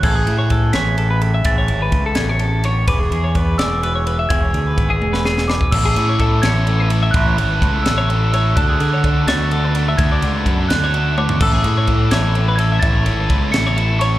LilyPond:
<<
  \new Staff \with { instrumentName = "Glockenspiel" } { \time 6/8 \key a \major \tempo 4. = 84 gis'''4 r8 b'''4. | a'''4. gis'''4 cis'''8 | d'''4 r8 e'''4 r8 | gis'''2~ gis'''8 d'''8 |
e'''4 r8 gis'''4. | fis'''4. e'''4 e'''8 | fis'''4 r8 a'''4. | gis'''4. fis'''4 d'''8 |
e'''4 r8 gis'''4 gis'''8 | a'''4 r8 cis''''4 cis'''8 | }
  \new Staff \with { instrumentName = "Clean electric guitar" } { \time 6/8 \key a \major a'16 gis'8 cis''16 a'8 cis''8 a'16 b'16 a'16 e''16~ | e''16 cis''8 b'8 a'8 cis''16 a'8 cis''8 | b'16 gis'8 cis''16 b'8 d''8 b'16 cis''16 b'16 e''16~ | e''16 cis''8 b'8 gis'8 b'16 gis'8 b'8 |
a'16 gis'8 cis''16 a'8 cis''8 a'16 b'16 a'16 e''16~ | e''16 cis''8 b'8 a'8 cis''16 a'8 cis''8 | a'16 gis'8 cis''16 a'8 cis''8 a'16 b'16 a'16 e''16~ | e''16 d''8 b'8 a'8 cis''16 a'8 cis''8 |
a'16 gis'8 cis''16 a'8 cis''8 a'16 b'16 a'16 e''16~ | e''16 cis''8 b'8 a'8 cis''16 a'8 cis''8 | }
  \new Staff \with { instrumentName = "Overdriven electric guitar" } { \time 6/8 \key a \major r2. | r2. | r2. | r2. |
<a cis' e' a'>8 <a cis' e' a'>8 <a cis' e' a'>8 <a cis' e' a'>8 <a cis' e' a'>8 <a cis' e' a'>8 | <a cis' e' a'>8 <a cis' e' a'>8 <a cis' e' a'>8 <a cis' e' a'>8 <a cis' e' a'>8 <a cis' e' a'>8 | <a d' fis' a'>8 <a d' fis' a'>8 <a d' fis' a'>8 <a d' fis' a'>8 <a d' fis' a'>8 <a d' fis' a'>8 | <a d' fis' a'>8 <a d' fis' a'>8 <a d' fis' a'>8 <a d' fis' a'>8 <a d' fis' a'>8 <a d' fis' a'>8 |
<a cis' e' a'>8 <a cis' e' a'>8 <a cis' e' a'>8 <a cis' e' a'>8 <a cis' e' a'>8 <a cis' e' a'>8 | <a cis' e' a'>8 <a cis' e' a'>8 <a cis' e' a'>8 <a cis' e' a'>8 <a cis' e' a'>8 <a cis' e' a'>8 | }
  \new Staff \with { instrumentName = "Clean electric guitar" } { \time 6/8 \key a \major << { gis'8 e'4 gis'4. | gis'8 e'2~ e'8 | gis'8 gis'4 gis'4. | gis'8 gis'4 gis'4. |
r2. | r2. | r2. | r2. |
r2. | r2. | } \\ { a,4 e4 a,4 | a,4 e8 b,8 cis8 d8 | e4 b4 b,4 | e4 b4 b,4 |
r2. | r2. | r2. | r2. |
r2. | r2. | } >> }
  \new Staff \with { instrumentName = "Fingered electric bass" } { \clef bass \time 6/8 \key a \major a,,8 a,4 a,,4. | a,,8 gis,,8 cis,8 a,,4. | e,,8 e,4 e,,4. | e,,8 d,8 gis,,8 e,,4. |
a,,8 a,4 a,,4. | a,,8 gis,,8 cis,8 a,,4. | d,8 d4 d,4. | d,8 cis,8 fis,8 d,4. |
a,,8 a,4 a,,4. | a,,8 gis,,8 cis,8 a,,4. | }
  \new DrumStaff \with { instrumentName = "Drums" } \drummode { \time 6/8 <cymc bd>8 cymr8 <bd cymr>8 <cymr sn>8 cymr8 cymr8 | <bd cymr>8 cymr8 <bd cymr>8 <cymr sn>8 cymr8 cymr8 | <bd cymr>8 cymr8 <bd cymr>8 <cymr sn>8 cymr8 cymr8 | <bd cymr>8 cymr8 <bd cymr>8 tommh16 sn16 sn16 sn16 sn16 bd16 |
<cymc bd>8 cymr8 <bd cymr>8 <cymr sn>8 cymr8 cymr8 | <bd cymr>8 cymr8 <bd cymr>8 <cymr sn>8 cymr8 cymr8 | <bd cymr>8 cymr8 <bd cymr>8 <cymr sn>8 cymr8 cymr8 | <bd cymr>8 cymr8 <bd cymr>8 <cymr sn>8 cymr8 tommh16 tomfh16 |
<cymc bd>8 cymr8 <bd cymr>8 <cymr sn>8 cymr8 cymr8 | <bd cymr>8 cymr8 <bd cymr>8 <cymr sn>8 cymr8 cymr8 | }
>>